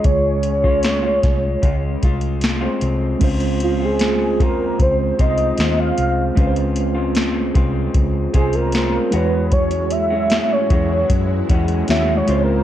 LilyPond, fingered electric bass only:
\new Staff \with { instrumentName = "Fingered electric bass" } { \clef bass \time 4/4 \key des \major \tempo 4 = 76 des,4. c,8 des,8 c,4 c,8 | des,4. ees,8 des,8 c,8 ees,8 c,8 | des,4. c,8 des,8 c,4 e,8~ | e,4. e,8 fis,8 e,8 ees,8 des,8 | }